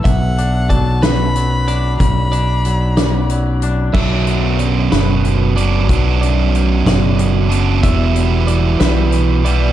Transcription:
<<
  \new Staff \with { instrumentName = "Violin" } { \time 6/8 \key b \minor \tempo 4. = 62 fis''4 a''8 b''4. | b''2 r4 | r2. | r2. |
r2. | }
  \new Staff \with { instrumentName = "Clean electric guitar" } { \time 6/8 \key b \minor e''4 d''8 b'4 d''8~ | d''8 d''4 d''4 r8 | e''4 d''8 b'4 d''8~ | d''8 d''4 d''4 r8 |
e''4 d''8 b'4 d''8 | }
  \new Staff \with { instrumentName = "Distorted electric guitar" } { \clef bass \time 6/8 \key b \minor r2. | r2. | <b,, fis, b, fis d'>2~ <b,, fis, b, fis d'>8 <b,, fis, b, fis d'>8 | <b,, fis, b, fis d'>2~ <b,, fis, b, fis d'>8 <b,, fis, b, fis d'>8 |
<e, b, e g b e'>2~ <e, b, e g b e'>8 <e, b, e g b e'>8 | }
  \new Staff \with { instrumentName = "Clean electric guitar" } { \clef bass \time 6/8 \key b \minor b,,8 d'8 fis8 fis,8 fis8 d'8 | b,,8 d'8 fis8 fis,8 fis8 d'8 | b,,8 fis,8 fis,8 b,8 fis,8 b,8 | b,,8 fis,8 fis,8 b,8 fis,8 b,8 |
e,8 b,8 e8 g8 e8 g8 | }
  \new Staff \with { instrumentName = "Fingered electric bass" } { \clef bass \time 6/8 \key b \minor b,,2. | b,,2. | b,,4. fis,,4. | b,,4. fis,,4. |
e,,4. b,,4. | }
  \new DrumStaff \with { instrumentName = "Drums" } \drummode { \time 6/8 <hh bd>8 hh8 <hh bd>8 <hh sn>8 hh8 hh8 | <hh bd>8 hh8 hh8 <hh sn>8 hh8 hh8 | <cymc bd>8 hh8 hh8 <hh sn>8 hh8 hh8 | <hh bd>8 hh8 hh8 <hh bd sn>8 hh8 hh8 |
<hh bd>8 hh8 hh8 <hh sn>8 hh8 hh8 | }
>>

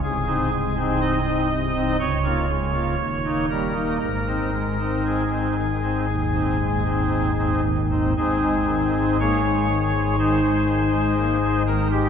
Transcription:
<<
  \new Staff \with { instrumentName = "Pipe organ" } { \time 4/4 \key aes \major \tempo 4 = 60 aes'4 ees''4 des''4. bes'8 | bes'4 aes'2~ aes'8 r8 | <c' ees' aes'>4 <aes' des''>4 <ees' aes' c''>4. bes'16 g'16 | }
  \new Staff \with { instrumentName = "Pipe organ" } { \time 4/4 \key aes \major << { c,16 <c' ees'>16 aes16 <c' ees'>8 <c' ees'>16 c16 <c' ees'>16 des,16 <bes f'>16 aes16 <bes f'>16 ees,16 <bes ees'>16 g16 <bes ees'>16 | aes,16 <c' ees'>16 aes16 <c' ees'>8 <c' ees'>16 ees16 <c' ees'>16 ees,16 <c' ees'>16 aes16 <c' ees'>8 <c' ees'>16 ees16 <c' ees'>16 | aes,16 aes16 ees16 aes16 bes16 aes16 ees16 aes16 ees16 aes16 ees16 aes16 bes16 aes16 ees16 aes16 | } \\ { c,,2 des,,4 ees,,4 | aes,,2 ees,,2 | aes,,1 | } >> }
>>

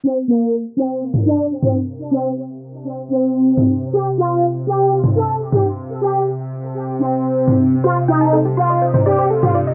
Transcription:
<<
  \new Staff \with { instrumentName = "Synth arpeggio sound" } { \time 4/4 \key f \mixolydian \tempo 4 = 123 r1 | r1 | r1 | r1 |
c''16 c'''16 g''16 a''16 a'16 g'16 c'''16 ees''16 c''16 c''16 d''16 c''16 a'16 g'16 d''16 ees''16 | }
  \new Staff \with { instrumentName = "Analog polysynth" } { \time 4/4 \key f \mixolydian c'16 r16 bes8 r8 c'8 r8 d'8 r16 c'16 r8 | r16 c'8 r4. c'4. r16 | g'16 r16 f'8 r8 g'8 r8 a'8 r16 g'16 r8 | r16 g'8 r4. c'4. r16 |
f'16 r16 ees'8 r8 f'8 r8 g'8 r16 f'16 r8 | }
  \new Staff \with { instrumentName = "Synth drone" } { \clef bass \time 4/4 \key f \mixolydian c1~ | c1~ | c1~ | c1~ |
c1 | }
  \new DrumStaff \with { instrumentName = "Drums" } \drummode { \time 4/4 r4 r4 r16 toml8. r16 toml8. | r4 r4 r4 r16 toml8. | r4 r4 r16 toml8. r16 toml8. | r4 r4 r4 r16 toml8. |
r4 r4 r16 toml8. r16 toml8. | }
>>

